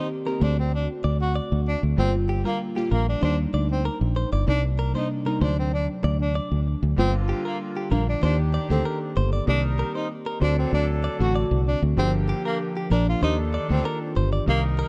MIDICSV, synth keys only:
0, 0, Header, 1, 2, 480
1, 0, Start_track
1, 0, Key_signature, -2, "minor"
1, 0, Tempo, 625000
1, 1518, Time_signature, 4, 2, 24, 8
1, 11430, End_track
2, 0, Start_track
2, 0, Title_t, "Synth keys"
2, 0, Program_c, 0, 88
2, 0, Control_c, 0, 64, 127
2, 0, Note_on_c, 0, 51, 76
2, 0, Note_on_c, 0, 58, 68
2, 0, Note_on_c, 0, 60, 69
2, 0, Note_on_c, 0, 67, 88
2, 162, Note_off_c, 0, 51, 0
2, 165, Note_off_c, 0, 58, 0
2, 168, Note_off_c, 0, 60, 0
2, 172, Note_off_c, 0, 67, 0
2, 195, Note_on_c, 0, 51, 78
2, 203, Note_on_c, 0, 58, 73
2, 208, Note_on_c, 0, 60, 68
2, 215, Note_on_c, 0, 67, 82
2, 308, Note_on_c, 0, 50, 78
2, 312, Note_off_c, 0, 60, 0
2, 314, Note_off_c, 0, 51, 0
2, 314, Note_on_c, 0, 57, 73
2, 318, Note_off_c, 0, 58, 0
2, 321, Note_on_c, 0, 60, 73
2, 324, Note_off_c, 0, 67, 0
2, 328, Control_c, 0, 64, 0
2, 328, Note_on_c, 0, 66, 87
2, 471, Control_c, 0, 64, 127
2, 1135, Note_off_c, 0, 50, 0
2, 1138, Note_off_c, 0, 57, 0
2, 1141, Note_off_c, 0, 60, 0
2, 1145, Note_off_c, 0, 66, 0
2, 1508, Note_on_c, 0, 50, 73
2, 1516, Note_on_c, 0, 55, 69
2, 1522, Note_on_c, 0, 58, 70
2, 1527, Control_c, 0, 64, 0
2, 1529, Note_on_c, 0, 65, 84
2, 1684, Control_c, 0, 64, 127
2, 1823, Note_off_c, 0, 50, 0
2, 1827, Note_off_c, 0, 55, 0
2, 1830, Note_off_c, 0, 58, 0
2, 1833, Note_off_c, 0, 65, 0
2, 1872, Note_on_c, 0, 50, 75
2, 1878, Note_on_c, 0, 55, 71
2, 1885, Note_on_c, 0, 58, 73
2, 1892, Note_on_c, 0, 65, 84
2, 2081, Note_off_c, 0, 50, 0
2, 2084, Note_off_c, 0, 55, 0
2, 2087, Note_off_c, 0, 58, 0
2, 2090, Note_off_c, 0, 65, 0
2, 2112, Note_on_c, 0, 50, 74
2, 2119, Note_on_c, 0, 55, 69
2, 2125, Note_on_c, 0, 58, 74
2, 2131, Note_on_c, 0, 65, 88
2, 2465, Note_off_c, 0, 55, 0
2, 2467, Note_on_c, 0, 62, 78
2, 2472, Note_off_c, 0, 58, 0
2, 2473, Note_off_c, 0, 50, 0
2, 2474, Note_on_c, 0, 55, 72
2, 2481, Note_on_c, 0, 58, 73
2, 2482, Note_off_c, 0, 65, 0
2, 2488, Note_on_c, 0, 63, 90
2, 2489, Control_c, 0, 64, 0
2, 2639, Control_c, 0, 64, 127
2, 3295, Note_off_c, 0, 62, 0
2, 3298, Note_off_c, 0, 55, 0
2, 3301, Note_off_c, 0, 58, 0
2, 3305, Note_off_c, 0, 63, 0
2, 3427, Note_on_c, 0, 48, 74
2, 3434, Note_on_c, 0, 55, 68
2, 3440, Note_on_c, 0, 58, 69
2, 3447, Note_on_c, 0, 63, 83
2, 3449, Control_c, 0, 64, 0
2, 3591, Control_c, 0, 64, 127
2, 3742, Note_off_c, 0, 48, 0
2, 3746, Note_off_c, 0, 55, 0
2, 3748, Note_off_c, 0, 58, 0
2, 3752, Note_off_c, 0, 63, 0
2, 3793, Note_on_c, 0, 48, 77
2, 3799, Note_on_c, 0, 55, 69
2, 3806, Note_on_c, 0, 58, 69
2, 3813, Note_on_c, 0, 62, 87
2, 4001, Note_off_c, 0, 48, 0
2, 4004, Note_off_c, 0, 55, 0
2, 4008, Note_off_c, 0, 58, 0
2, 4011, Note_off_c, 0, 62, 0
2, 4033, Note_on_c, 0, 48, 75
2, 4039, Note_on_c, 0, 55, 75
2, 4045, Note_on_c, 0, 58, 69
2, 4051, Note_on_c, 0, 63, 86
2, 4136, Note_off_c, 0, 48, 0
2, 4145, Note_on_c, 0, 48, 76
2, 4151, Note_on_c, 0, 54, 73
2, 4156, Note_off_c, 0, 55, 0
2, 4158, Note_on_c, 0, 57, 74
2, 4159, Note_off_c, 0, 58, 0
2, 4162, Note_off_c, 0, 63, 0
2, 4165, Note_on_c, 0, 62, 89
2, 4167, Control_c, 0, 64, 0
2, 4294, Control_c, 0, 64, 127
2, 4973, Note_off_c, 0, 48, 0
2, 4976, Note_off_c, 0, 54, 0
2, 4980, Note_off_c, 0, 57, 0
2, 4983, Note_off_c, 0, 62, 0
2, 5348, Note_on_c, 0, 50, 75
2, 5355, Note_on_c, 0, 55, 72
2, 5360, Note_on_c, 0, 58, 69
2, 5367, Note_on_c, 0, 65, 82
2, 5369, Control_c, 0, 64, 0
2, 5525, Control_c, 0, 64, 127
2, 5971, Note_off_c, 0, 50, 0
2, 5974, Note_off_c, 0, 55, 0
2, 5977, Note_off_c, 0, 58, 0
2, 5980, Note_off_c, 0, 65, 0
2, 6065, Note_on_c, 0, 50, 74
2, 6072, Note_on_c, 0, 55, 72
2, 6078, Note_on_c, 0, 58, 68
2, 6085, Note_on_c, 0, 62, 81
2, 6303, Note_off_c, 0, 58, 0
2, 6306, Note_on_c, 0, 51, 80
2, 6309, Note_off_c, 0, 62, 0
2, 6312, Note_off_c, 0, 50, 0
2, 6313, Note_on_c, 0, 58, 76
2, 6315, Note_off_c, 0, 55, 0
2, 6318, Note_on_c, 0, 62, 70
2, 6325, Note_on_c, 0, 67, 86
2, 6328, Control_c, 0, 64, 0
2, 6479, Control_c, 0, 64, 127
2, 6622, Note_off_c, 0, 51, 0
2, 6625, Note_off_c, 0, 58, 0
2, 6628, Note_off_c, 0, 62, 0
2, 6631, Note_off_c, 0, 67, 0
2, 6671, Note_on_c, 0, 51, 77
2, 6677, Note_on_c, 0, 58, 70
2, 6683, Note_on_c, 0, 62, 72
2, 6691, Note_on_c, 0, 69, 86
2, 7187, Note_off_c, 0, 51, 0
2, 7190, Note_off_c, 0, 58, 0
2, 7193, Note_off_c, 0, 62, 0
2, 7197, Note_off_c, 0, 69, 0
2, 7265, Note_on_c, 0, 50, 62
2, 7272, Note_on_c, 0, 58, 70
2, 7279, Note_on_c, 0, 60, 67
2, 7284, Note_on_c, 0, 67, 83
2, 7289, Control_c, 0, 64, 0
2, 7316, Note_on_c, 0, 51, 74
2, 7324, Note_off_c, 0, 50, 0
2, 7403, Control_c, 0, 64, 127
2, 7893, Note_off_c, 0, 58, 0
2, 7896, Note_off_c, 0, 60, 0
2, 7899, Note_off_c, 0, 67, 0
2, 7915, Note_off_c, 0, 51, 0
2, 7986, Note_on_c, 0, 50, 81
2, 7992, Note_on_c, 0, 57, 71
2, 7999, Note_on_c, 0, 60, 70
2, 8005, Note_on_c, 0, 66, 89
2, 8010, Control_c, 0, 64, 0
2, 8130, Control_c, 0, 64, 127
2, 8505, Note_off_c, 0, 50, 0
2, 8508, Note_off_c, 0, 57, 0
2, 8511, Note_off_c, 0, 60, 0
2, 8514, Note_off_c, 0, 66, 0
2, 8593, Note_on_c, 0, 50, 79
2, 8599, Note_on_c, 0, 57, 74
2, 8604, Note_on_c, 0, 60, 76
2, 8612, Note_on_c, 0, 66, 92
2, 9108, Note_off_c, 0, 50, 0
2, 9111, Note_off_c, 0, 57, 0
2, 9114, Note_off_c, 0, 60, 0
2, 9117, Note_off_c, 0, 66, 0
2, 9189, Note_on_c, 0, 53, 78
2, 9197, Note_on_c, 0, 58, 70
2, 9202, Note_on_c, 0, 62, 68
2, 9208, Control_c, 0, 64, 0
2, 9209, Note_on_c, 0, 67, 85
2, 9335, Control_c, 0, 64, 127
2, 9811, Note_off_c, 0, 53, 0
2, 9815, Note_off_c, 0, 58, 0
2, 9818, Note_off_c, 0, 62, 0
2, 9821, Note_off_c, 0, 67, 0
2, 9907, Note_on_c, 0, 53, 77
2, 9914, Note_on_c, 0, 58, 73
2, 9921, Note_on_c, 0, 62, 71
2, 9927, Note_on_c, 0, 70, 82
2, 10144, Note_off_c, 0, 58, 0
2, 10148, Note_on_c, 0, 51, 82
2, 10151, Note_off_c, 0, 62, 0
2, 10153, Note_off_c, 0, 53, 0
2, 10153, Note_on_c, 0, 58, 71
2, 10160, Note_on_c, 0, 62, 72
2, 10163, Note_off_c, 0, 70, 0
2, 10166, Note_on_c, 0, 67, 87
2, 10170, Control_c, 0, 64, 0
2, 10312, Control_c, 0, 64, 127
2, 10463, Note_off_c, 0, 51, 0
2, 10465, Note_off_c, 0, 58, 0
2, 10469, Note_off_c, 0, 62, 0
2, 10472, Note_off_c, 0, 67, 0
2, 10510, Note_on_c, 0, 51, 78
2, 10516, Note_on_c, 0, 58, 72
2, 10522, Note_on_c, 0, 62, 72
2, 10529, Note_on_c, 0, 65, 67
2, 10574, Note_off_c, 0, 65, 0
2, 10578, Note_on_c, 0, 67, 85
2, 11026, Note_off_c, 0, 51, 0
2, 11030, Note_off_c, 0, 58, 0
2, 11033, Note_off_c, 0, 62, 0
2, 11061, Note_off_c, 0, 67, 0
2, 11107, Note_on_c, 0, 51, 76
2, 11114, Note_on_c, 0, 58, 70
2, 11120, Note_on_c, 0, 60, 69
2, 11127, Note_on_c, 0, 67, 81
2, 11128, Control_c, 0, 64, 0
2, 11255, Control_c, 0, 64, 127
2, 11430, Note_off_c, 0, 51, 0
2, 11430, Note_off_c, 0, 58, 0
2, 11430, Note_off_c, 0, 60, 0
2, 11430, Note_off_c, 0, 67, 0
2, 11430, End_track
0, 0, End_of_file